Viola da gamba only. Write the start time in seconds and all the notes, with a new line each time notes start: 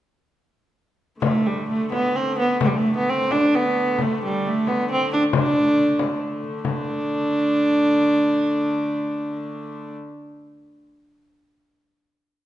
1.22 A3
1.46 G3
1.69 A3
1.93 B3
2.16 C4
2.39 B3
2.63 A3
2.67 G3
2.77 A3
2.97 B3
3.10 C4
3.32 D4
3.55 B3
4.01 A3
4.24 G3
4.47 A3
4.68 B3
4.91 C4
5.13 D4
5.36 D4
6.64 D4